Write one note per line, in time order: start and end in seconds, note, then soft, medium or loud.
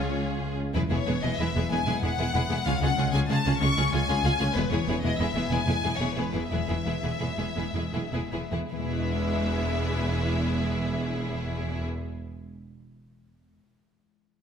0.00 0.59 C#2 medium
0.00 0.76 C#3 medium
0.00 0.56 G#3 medium
0.00 1.70 G#3 soft
0.00 0.59 C#4 medium
0.00 0.77 C#4 soft
0.00 0.59 F4 medium
0.00 0.56 G#4 medium
0.00 2.68 G#4 medium
0.00 0.25 C#5 medium
0.00 0.41 F5 soft
0.10 0.58 C#5 soft
0.42 0.76 F5 soft
0.59 0.76 C#5 soft
0.74 0.81 E1 medium
0.74 0.81 E2 medium
0.74 2.68 E3 soft
0.74 0.82 G#3 medium
0.74 0.82 B3 soft
0.74 0.81 E4 soft
0.74 0.80 G#4 soft
0.74 0.82 B4 medium
0.90 0.97 E1 medium
0.90 0.97 E2 medium
0.90 0.97 G#3 soft
0.90 0.98 B3 soft
0.90 0.97 E4 soft
0.90 1.85 E4 soft
0.90 0.97 G#4 soft
0.90 1.23 C#5 medium
1.06 1.14 E1 medium
1.06 1.14 E2 medium
1.06 1.14 G#3 soft
1.06 1.14 B3 soft
1.06 1.13 E4 soft
1.06 1.13 G#4 soft
1.06 4.58 B4 soft
1.23 1.30 E1 medium
1.23 1.30 E2 soft
1.23 1.31 G#3 soft
1.23 1.31 B3 soft
1.23 1.29 E4 soft
1.23 1.29 G#4 soft
1.23 1.39 D#5 medium
1.23 2.18 E5 soft
1.39 1.46 E1 soft
1.39 1.46 E2 soft
1.39 1.47 G#3 soft
1.39 1.47 B3 soft
1.39 1.47 E4 soft
1.39 1.46 G#4 soft
1.39 1.71 E5 medium
1.39 2.34 B5 soft
1.55 1.61 E1 medium
1.55 1.62 E2 medium
1.55 1.62 G#3 soft
1.55 1.62 B3 soft
1.55 1.62 E4 soft
1.55 1.62 G#4 soft
1.71 1.78 E1 medium
1.71 1.77 E2 medium
1.71 2.81 G#3 soft
1.71 1.78 G#3 soft
1.71 1.78 B3 medium
1.71 1.78 E4 soft
1.71 1.78 G#4 soft
1.71 2.03 G#5 medium
1.86 1.93 E1 soft
1.86 1.93 E2 medium
1.86 1.93 G#3 soft
1.86 1.93 B3 soft
1.86 2.68 E4 soft
1.86 1.93 E4 soft
1.86 1.93 G#4 soft
2.02 2.10 E1 medium
2.02 2.09 E2 soft
2.02 2.09 G#3 soft
2.02 2.09 B3 soft
2.02 2.10 E4 soft
2.02 2.10 G#4 soft
2.02 2.65 F#5 medium
2.18 2.26 E1 medium
2.18 2.25 E2 medium
2.18 2.25 G#3 medium
2.18 2.25 B3 medium
2.18 2.26 E4 medium
2.18 2.26 G#4 medium
2.18 2.68 E5 soft
2.34 2.41 E1 medium
2.34 2.40 E2 medium
2.34 2.40 G#3 soft
2.34 2.41 B3 soft
2.34 2.41 E4 soft
2.34 2.42 G#4 soft
2.34 2.68 B5 medium
2.49 2.57 E1 medium
2.49 2.56 E2 medium
2.49 2.56 G#3 soft
2.49 2.56 B3 soft
2.49 2.57 E4 soft
2.49 2.57 G#4 medium
2.66 2.73 C#2 medium
2.66 4.57 C#3 medium
2.66 2.73 G#3 medium
2.66 2.73 C#4 medium
2.66 2.73 F4 medium
2.66 2.73 G#4 soft
2.66 2.82 F5 medium
2.82 2.88 C#2 medium
2.82 2.89 C#2 medium
2.82 2.88 G#3 medium
2.82 3.76 G#3 soft
2.82 2.88 C#4 soft
2.82 2.89 F4 medium
2.82 2.89 G#4 medium
2.82 3.13 F#5 medium
2.97 3.04 C#2 medium
2.97 3.05 C#2 medium
2.97 3.05 G#3 soft
2.97 3.04 C#4 soft
2.97 3.05 F4 soft
2.97 3.05 G#4 soft
2.97 3.44 C#5 medium
3.13 3.19 C#2 medium
3.13 3.20 C#2 medium
3.13 3.20 G#3 medium
3.13 3.20 C#4 medium
3.13 3.21 F4 medium
3.13 3.21 G#4 medium
3.13 3.20 G#5 medium
3.29 3.36 C#2 medium
3.29 3.36 G#3 soft
3.29 3.36 C#4 medium
3.29 3.37 F4 soft
3.29 3.37 G#4 soft
3.29 4.25 F5 medium
3.29 3.61 A5 medium
3.45 3.52 C#2 medium
3.45 3.52 G#3 medium
3.45 3.52 C#4 medium
3.45 3.52 F4 soft
3.45 3.52 G#4 soft
3.45 3.92 C#5 soft
3.60 3.68 C#2 medium
3.60 3.67 G#3 medium
3.60 3.67 C#4 medium
3.60 4.57 C#4 soft
3.60 3.68 F4 medium
3.60 3.68 G#4 medium
3.60 3.92 C#6 medium
3.77 3.84 C#2 medium
3.77 5.51 G#3 soft
3.77 3.84 G#3 medium
3.77 3.83 C#4 medium
3.77 3.84 F4 medium
3.77 3.84 G#4 soft
3.92 3.99 C#2 medium
3.92 3.99 G#3 soft
3.92 3.99 C#4 soft
3.92 3.99 F4 medium
3.92 4.00 G#4 medium
3.92 4.41 C#5 soft
3.92 4.55 G#5 loud
4.09 4.15 C#2 medium
4.09 4.15 G#3 medium
4.09 4.15 C#4 medium
4.09 4.15 F4 medium
4.09 4.16 G#4 medium
4.09 4.87 G#4 medium
4.24 4.30 C#2 medium
4.24 4.31 C#2 medium
4.24 4.31 G#3 medium
4.24 4.31 C#4 medium
4.24 4.31 F4 medium
4.24 4.31 G#4 medium
4.24 4.58 F5 medium
4.40 4.46 C#2 medium
4.40 4.47 G#3 soft
4.40 4.47 C#4 soft
4.40 4.46 F4 medium
4.40 4.46 G#4 medium
4.40 4.58 C#5 medium
4.55 4.62 E1 medium
4.55 4.62 E2 medium
4.55 6.52 E3 medium
4.55 4.63 G#3 medium
4.55 4.63 B3 medium
4.55 4.63 E4 medium
4.55 4.63 G#4 medium
4.55 4.72 B4 medium
4.71 4.78 E1 medium
4.71 4.78 E2 medium
4.71 4.78 G#3 soft
4.71 4.78 B3 medium
4.71 4.78 E4 soft
4.71 5.66 E4 soft
4.71 4.78 G#4 medium
4.71 5.03 C#5 medium
4.87 4.94 E1 medium
4.87 4.93 E2 medium
4.87 4.94 G#3 medium
4.87 4.94 B3 soft
4.87 4.95 E4 soft
4.87 4.95 G#4 soft
4.87 5.35 G#4 soft
5.03 5.10 E1 medium
5.03 5.10 E2 medium
5.03 5.10 G#3 medium
5.03 5.10 B3 soft
5.03 5.11 E4 soft
5.03 5.11 G#4 medium
5.03 5.19 D#5 medium
5.03 6.00 E5 soft
5.19 5.25 E1 medium
5.19 5.26 E2 medium
5.19 5.26 G#3 soft
5.19 5.26 B3 soft
5.19 5.26 E4 soft
5.19 5.27 G#4 soft
5.19 5.51 E5 medium
5.19 6.17 B5 medium
5.34 5.41 E1 medium
5.34 5.42 E2 medium
5.34 5.42 G#3 medium
5.34 5.42 B3 soft
5.34 5.42 E4 soft
5.34 5.42 G#4 soft
5.34 5.83 G#4 soft
5.50 5.57 E1 medium
5.50 5.58 E2 medium
5.50 7.56 G#3 soft
5.50 5.58 G#3 soft
5.50 5.58 B3 medium
5.50 5.58 E4 soft
5.50 5.58 G#4 soft
5.50 6.00 G#5 medium
5.66 5.73 E1 soft
5.66 5.74 E2 medium
5.66 5.74 G#3 soft
5.66 5.74 B3 soft
5.66 6.69 E4 soft
5.66 5.74 E4 soft
5.66 5.74 G#4 soft
5.83 5.90 E1 medium
5.83 5.90 E2 soft
5.83 5.91 G#3 soft
5.83 5.91 B3 soft
5.83 5.91 E4 soft
5.83 5.91 G#4 soft
5.83 6.34 G#4 soft
5.99 6.06 E1 soft
5.99 6.07 E2 soft
5.99 6.08 G#3 soft
5.99 6.08 B3 soft
5.99 6.07 E4 soft
5.99 6.07 G#4 soft
5.99 6.16 C#5 medium
5.99 7.03 E5 soft
6.17 6.24 E1 soft
6.17 6.24 E2 medium
6.17 6.25 G#3 soft
6.17 6.24 B3 soft
6.17 6.24 E4 soft
6.17 6.24 G#4 soft
6.17 6.52 B4 medium
6.17 7.21 B5 soft
6.33 6.41 E1 soft
6.33 6.41 E2 soft
6.33 6.41 G#3 soft
6.33 6.42 B3 soft
6.33 6.40 E4 soft
6.33 6.40 G#4 soft
6.33 6.86 G#4 soft
6.49 6.58 E1 soft
6.49 6.59 E2 soft
6.49 8.70 E3 soft
6.49 6.59 G#3 soft
6.49 6.59 B3 soft
6.49 6.58 E4 soft
6.49 6.58 G#4 soft
6.49 8.47 E5 medium
6.68 6.76 E1 soft
6.68 6.76 E2 soft
6.68 6.76 G#3 soft
6.68 6.75 B3 soft
6.68 6.75 E4 soft
6.68 7.74 E4 soft
6.68 6.75 G#4 soft
6.85 6.93 E1 soft
6.85 6.92 E2 soft
6.85 6.93 G#3 soft
6.85 6.93 B3 soft
6.85 6.93 E4 soft
6.85 6.93 G#4 soft
6.85 7.39 G#4 soft
7.03 7.10 E1 soft
7.03 7.10 E2 soft
7.03 7.11 G#3 soft
7.03 7.11 B3 soft
7.03 7.10 E4 soft
7.03 7.10 G#4 soft
7.03 8.12 E5 soft
7.20 7.28 E1 soft
7.20 7.28 E2 soft
7.20 7.28 G#3 soft
7.20 7.28 B3 soft
7.20 7.27 E4 soft
7.20 7.27 G#4 soft
7.20 8.31 B5 soft
7.38 7.46 E1 soft
7.38 7.46 E2 soft
7.38 7.47 G#3 soft
7.38 7.47 B3 soft
7.38 7.46 E4 soft
7.38 7.46 G#4 soft
7.38 7.93 G#4 soft
7.56 7.65 E1 soft
7.56 7.64 E2 soft
7.56 7.64 G#3 soft
7.56 8.77 G#3 soft
7.56 7.64 B3 soft
7.56 7.64 E4 soft
7.56 7.64 G#4 soft
7.74 7.82 E1 soft
7.74 7.82 E2 soft
7.74 7.83 G#3 soft
7.74 7.83 B3 soft
7.74 7.82 E4 soft
7.74 8.85 E4 soft
7.74 7.83 G#4 soft
7.93 8.01 E1 soft
7.93 8.01 E2 soft
7.93 8.02 G#3 soft
7.93 8.01 B3 soft
7.93 8.02 E4 soft
7.93 8.01 G#4 soft
7.93 8.51 G#4 soft
8.12 8.20 E1 soft
8.12 8.20 E2 soft
8.12 8.21 G#3 soft
8.12 8.21 B3 soft
8.12 8.21 E4 soft
8.12 8.21 G#4 soft
8.12 8.98 E5 soft
8.32 8.40 E1 soft
8.32 8.40 E2 soft
8.32 8.40 G#3 soft
8.32 8.40 B3 soft
8.32 8.40 E4 soft
8.32 8.40 G#4 soft
8.32 12.22 B5 soft
8.52 8.61 E1 soft
8.52 8.60 E2 soft
8.52 8.60 G#3 soft
8.52 8.60 B3 soft
8.52 8.60 E4 soft
8.52 12.42 G#4 soft
8.52 8.60 G#4 soft
8.71 11.85 E1 medium
8.71 11.84 E2 soft
8.71 12.61 E3 soft
8.71 11.84 G#3 medium
8.71 11.84 B3 soft
8.71 11.84 E4 soft
8.71 11.84 G#4 soft
8.71 11.85 E5 medium
8.78 12.23 G#3 soft
8.86 11.98 E4 soft
8.92 12.04 B4 soft
8.99 12.11 E5 soft